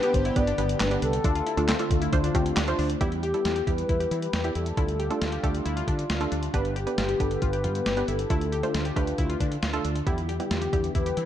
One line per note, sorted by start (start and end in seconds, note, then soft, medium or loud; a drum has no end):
0.00 1.23 D3 medium
0.00 1.23 B3 medium
0.00 0.26 B3 medium
0.00 0.26 D4 medium
0.00 1.23 G4 medium
0.00 0.26 G4 medium
0.00 0.20 G4 medium
0.00 0.16 B4 loud
0.00 0.26 B4 medium
0.00 closed hi-hat medium
0.14 0.30 G1 loud
0.14 0.36 C5 loud
0.14 kick medium
0.14 closed hi-hat medium
0.25 0.42 E4 medium
0.25 closed hi-hat medium
0.36 0.52 G1 loud
0.36 0.51 B3 medium
0.36 0.51 D4 medium
0.36 0.51 G4 medium
0.36 0.51 B4 medium
0.36 0.77 D5 loud
0.36 kick medium
0.36 closed hi-hat medium
0.47 0.56 D4 medium
0.47 closed hi-hat medium
0.58 0.74 G1 loud
0.58 0.81 B3 medium
0.58 0.75 B3 medium
0.58 0.81 D4 medium
0.58 0.81 G4 medium
0.58 0.81 B4 medium
0.58 closed hi-hat medium
0.69 closed hi-hat medium
0.80 0.96 G1 loud
0.80 0.97 D4 medium
0.80 0.90 B4 loud
0.80 snare loud
0.80 clap loud
0.80 closed hi-hat medium
0.91 1.14 B3 medium
0.91 1.14 D4 medium
0.91 1.14 G4 medium
0.91 1.14 B4 medium
0.91 closed hi-hat medium
1.02 1.18 C2 loud
1.02 1.19 D4 medium
1.02 2.53 A4 loud
1.02 closed hi-hat medium
1.13 closed hi-hat medium
1.24 1.40 D2 loud
1.24 2.99 D3 medium
1.24 1.47 A3 medium
1.24 2.99 A3 medium
1.24 1.47 D4 medium
1.24 1.33 D4 loud
1.24 1.47 F4 medium
1.24 2.99 F4 medium
1.24 1.47 A4 medium
1.24 kick loud
1.24 closed hi-hat medium
1.35 1.44 F4 medium
1.35 closed hi-hat medium
1.46 1.55 E4 medium
1.46 closed hi-hat medium
1.57 1.73 D2 loud
1.57 1.72 A3 medium
1.57 1.72 D4 medium
1.57 1.66 D4 medium
1.57 1.72 F4 medium
1.57 1.72 A4 loud
1.57 closed hi-hat medium
1.69 1.77 C4 medium
1.69 snare loud
1.69 clap medium
1.69 closed hi-hat medium
1.79 2.02 A3 medium
1.79 2.02 D4 medium
1.79 2.02 F4 medium
1.79 1.97 F4 medium
1.79 2.02 A4 loud
1.79 closed hi-hat medium
1.91 2.06 D2 loud
1.91 kick medium
1.91 closed hi-hat medium
2.02 2.19 E4 medium
2.02 closed hi-hat medium
2.13 2.28 D2 loud
2.13 2.28 A3 medium
2.13 2.28 D4 medium
2.13 2.28 F4 medium
2.13 2.28 C5 loud
2.13 kick medium
2.13 closed hi-hat medium
2.24 2.32 D4 medium
2.24 closed hi-hat medium
2.35 2.50 D2 medium
2.35 2.57 A3 loud
2.35 2.52 C4 medium
2.35 2.57 D4 medium
2.35 2.57 F4 medium
2.35 2.57 G4 loud
2.35 kick medium
2.35 closed hi-hat medium
2.46 closed hi-hat medium
2.57 2.72 D2 loud
2.57 2.74 D4 medium
2.57 snare loud
2.57 clap medium
2.57 closed hi-hat medium
2.68 2.90 A3 medium
2.68 2.90 D4 medium
2.68 2.90 F4 medium
2.68 2.90 C5 loud
2.68 closed hi-hat medium
2.79 2.94 D2 medium
2.79 2.96 D4 medium
2.79 open hi-hat medium
2.90 closed hi-hat medium
3.01 3.32 E2 medium
3.01 3.23 G3 medium
3.01 6.50 G3 medium
3.01 3.23 B3 medium
3.01 4.76 B3 medium
3.01 3.23 E4 medium
3.01 3.18 E4 medium
3.01 3.23 G4 loud
3.01 4.76 G4 medium
3.01 kick loud
3.01 closed hi-hat medium
3.12 closed hi-hat soft
3.23 3.40 G4 medium
3.23 3.64 G4 loud
3.23 closed hi-hat medium
3.34 3.57 G3 medium
3.34 3.57 B3 medium
3.34 3.57 E4 medium
3.34 3.57 A4 medium
3.34 closed hi-hat soft
3.45 3.60 E2 loud
3.45 3.53 F4 medium
3.45 snare loud
3.45 closed hi-hat medium
3.56 3.65 G4 medium
3.56 closed hi-hat medium
3.67 3.82 E2 medium
3.67 4.20 G3 medium
3.67 4.20 B3 medium
3.67 4.20 E4 medium
3.67 4.20 G4 medium
3.67 3.84 G4 medium
3.67 4.18 B4 loud
3.67 kick medium
3.67 closed hi-hat medium
3.78 closed hi-hat soft
3.89 4.05 E2 medium
3.89 3.98 E4 medium
3.89 kick medium
3.89 closed hi-hat medium
4.00 4.09 G4 medium
4.00 closed hi-hat medium
4.11 4.27 E3 medium
4.11 4.28 E4 medium
4.11 closed hi-hat medium
4.22 4.53 B4 loud
4.22 closed hi-hat medium
4.33 4.49 E2 loud
4.33 4.42 G4 medium
4.33 snare loud
4.33 closed hi-hat medium
4.44 4.67 G3 medium
4.44 4.67 B3 medium
4.44 4.67 E4 medium
4.44 4.53 G4 medium
4.44 4.67 G4 medium
4.44 closed hi-hat soft
4.55 4.71 E2 medium
4.55 4.72 E4 medium
4.55 5.84 A4 loud
4.55 closed hi-hat medium
4.66 closed hi-hat medium
4.77 5.08 D2 loud
4.77 5.00 A3 medium
4.77 5.00 D4 medium
4.77 6.52 D4 medium
4.77 4.94 E4 medium
4.77 5.00 F4 medium
4.77 6.52 F4 medium
4.77 5.00 A4 medium
4.77 kick loud
4.77 closed hi-hat medium
4.88 closed hi-hat soft
4.99 5.16 G4 medium
4.99 closed hi-hat medium
5.10 5.33 A3 medium
5.10 5.33 D4 medium
5.10 5.33 F4 medium
5.10 5.33 A4 loud
5.10 closed hi-hat soft
5.21 5.37 D2 loud
5.21 5.30 F4 medium
5.21 snare loud
5.21 closed hi-hat medium
5.32 5.41 G4 medium
5.32 closed hi-hat medium
5.43 5.59 D2 medium
5.43 5.96 A3 medium
5.43 5.96 D4 medium
5.43 5.96 F4 medium
5.43 5.60 G4 medium
5.43 5.96 A4 medium
5.43 kick medium
5.43 closed hi-hat medium
5.55 closed hi-hat soft
5.66 5.81 D2 medium
5.66 5.74 E4 medium
5.66 closed hi-hat medium
5.77 5.85 F4 medium
5.77 closed hi-hat medium
5.88 6.03 D3 medium
5.88 6.05 D4 medium
5.88 kick medium
5.88 closed hi-hat medium
5.99 closed hi-hat medium
6.10 6.25 D2 medium
6.10 6.18 F4 medium
6.10 snare loud
6.10 closed hi-hat medium
6.21 6.43 A3 medium
6.21 6.43 D4 medium
6.21 6.29 F4 medium
6.21 6.43 F4 medium
6.21 6.43 A4 medium
6.21 closed hi-hat soft
6.32 6.47 D2 medium
6.32 6.49 D4 medium
6.32 closed hi-hat medium
6.43 closed hi-hat medium
6.54 6.85 G1 loud
6.54 8.29 D3 medium
6.54 6.76 B3 medium
6.54 8.29 B3 medium
6.54 6.71 D4 medium
6.54 6.76 D4 medium
6.54 6.76 G4 medium
6.54 8.29 G4 medium
6.54 6.76 B4 loud
6.54 kick loud
6.54 closed hi-hat medium
6.65 closed hi-hat soft
6.76 7.21 G4 loud
6.76 6.93 G4 medium
6.76 closed hi-hat medium
6.87 7.09 B3 medium
6.87 7.09 D4 medium
6.87 7.09 G4 medium
6.87 7.09 B4 medium
6.87 closed hi-hat soft
6.98 7.13 G1 medium
6.98 7.06 F4 medium
6.98 snare loud
6.98 closed hi-hat medium
7.09 7.17 G4 medium
7.09 closed hi-hat medium
7.20 7.35 G1 loud
7.20 7.73 B3 medium
7.20 7.73 D4 medium
7.20 7.73 G4 medium
7.20 7.37 G4 medium
7.20 7.42 A4 medium
7.20 7.73 B4 medium
7.20 kick medium
7.20 closed hi-hat medium
7.31 closed hi-hat medium
7.42 7.66 G1 loud
7.42 7.50 F4 medium
7.42 7.73 B4 loud
7.42 kick medium
7.42 closed hi-hat medium
7.53 7.62 G4 medium
7.53 closed hi-hat medium
7.64 7.80 G2 medium
7.64 7.81 F4 medium
7.64 closed hi-hat medium
7.75 8.06 B4 loud
7.75 closed hi-hat medium
7.86 8.02 G1 medium
7.86 7.95 G4 medium
7.86 snare loud
7.86 closed hi-hat medium
7.97 8.20 B3 medium
7.97 8.20 D4 medium
7.97 8.06 G4 medium
7.97 8.20 G4 medium
7.97 8.20 B4 medium
7.97 closed hi-hat soft
8.08 8.24 G1 medium
8.08 8.25 E4 medium
8.08 9.37 A4 loud
8.08 closed hi-hat medium
8.19 closed hi-hat medium
8.30 8.61 D2 loud
8.30 11.25 D3 medium
8.30 8.53 A3 medium
8.30 10.05 D4 medium
8.30 8.53 D4 medium
8.30 8.47 E4 medium
8.30 10.05 F4 medium
8.30 8.53 F4 medium
8.30 8.53 A4 medium
8.30 kick loud
8.30 closed hi-hat medium
8.41 closed hi-hat soft
8.52 8.69 G4 medium
8.52 closed hi-hat medium
8.63 8.86 A3 medium
8.63 8.86 D4 medium
8.63 8.86 F4 medium
8.63 8.86 C5 medium
8.63 closed hi-hat medium
8.74 8.90 D2 medium
8.74 8.83 F4 medium
8.74 snare loud
8.74 closed hi-hat medium
8.85 8.94 G4 medium
8.85 closed hi-hat medium
8.96 9.12 D2 medium
8.96 9.49 A3 medium
8.96 9.49 D4 medium
8.96 9.49 F4 medium
8.96 9.13 G4 medium
8.96 9.49 B4 medium
8.96 kick medium
8.96 closed hi-hat medium
9.07 closed hi-hat soft
9.18 9.34 D2 loud
9.18 9.27 E4 medium
9.18 kick medium
9.18 closed hi-hat medium
9.29 9.38 F4 medium
9.29 closed hi-hat medium
9.40 9.56 D3 medium
9.40 9.57 D4 medium
9.40 kick medium
9.40 closed hi-hat medium
9.52 closed hi-hat medium
9.63 9.78 D2 medium
9.63 9.71 F4 medium
9.63 snare loud
9.63 closed hi-hat medium
9.73 9.96 A3 medium
9.73 9.96 D4 medium
9.73 9.96 F4 medium
9.73 9.82 F4 medium
9.73 9.96 A4 loud
9.73 closed hi-hat soft
9.85 10.00 D2 medium
9.85 10.02 D4 medium
9.85 closed hi-hat medium
9.96 closed hi-hat medium
10.06 10.38 E2 loud
10.06 10.29 G3 medium
10.06 10.29 B3 medium
10.06 11.25 B3 medium
10.06 10.29 E4 medium
10.06 10.24 E4 medium
10.06 10.29 G4 loud
10.06 11.25 G4 medium
10.06 kick loud
10.06 closed hi-hat medium
10.18 closed hi-hat soft
10.29 10.46 G4 medium
10.29 10.91 G4 loud
10.29 closed hi-hat medium
10.40 10.62 G3 medium
10.40 10.62 B3 medium
10.40 10.62 E4 medium
10.40 10.62 G4 medium
10.40 closed hi-hat medium
10.51 10.66 E2 loud
10.51 10.59 F4 medium
10.51 snare medium
10.51 closed hi-hat medium
10.62 10.70 G4 medium
10.62 closed hi-hat medium
10.73 10.88 E2 loud
10.73 11.25 G3 medium
10.73 11.25 B3 medium
10.73 11.25 E4 medium
10.73 11.25 G4 medium
10.73 10.90 G4 medium
10.73 kick medium
10.73 closed hi-hat medium
10.84 closed hi-hat soft
10.95 11.10 E2 medium
10.95 11.03 E4 medium
10.95 11.25 B4 loud
10.95 kick medium
10.95 closed hi-hat medium
11.06 11.15 G4 medium
11.06 closed hi-hat medium
11.17 11.25 E3 medium
11.17 11.25 E4 medium
11.17 closed hi-hat medium